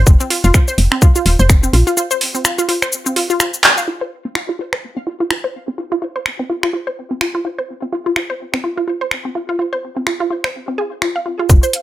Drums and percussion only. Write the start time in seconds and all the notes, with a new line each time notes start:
0.07 kick, cabasa
0.20 cabasa
0.30 open hi-hat
0.44 cabasa
0.54 finger snap, kick, cabasa
0.68 cabasa
0.78 open hi-hat
0.92 finger snap
1.02 kick, cabasa
1.16 cabasa
1.26 open hi-hat
1.39 cabasa
1.50 finger snap, kick, cabasa
1.63 cabasa
1.73 open hi-hat
1.87 cabasa
1.97 cabasa
2.11 cabasa
2.21 open hi-hat
2.35 cabasa
2.45 finger snap, cabasa
2.59 cabasa
2.69 open hi-hat
2.82 finger snap, cabasa
2.92 cabasa
3.06 cabasa
3.16 open hi-hat
3.30 cabasa
3.40 finger snap, cabasa
3.54 cabasa
3.64 clap, open hi-hat
3.78 cabasa
4.35 finger snap
4.73 finger snap
5.31 finger snap
6.26 finger snap
6.63 finger snap
7.21 finger snap
8.16 finger snap
8.54 finger snap
9.11 finger snap
10.07 finger snap
10.44 finger snap
11.02 finger snap
11.50 kick, cabasa
11.63 cabasa
11.73 closed hi-hat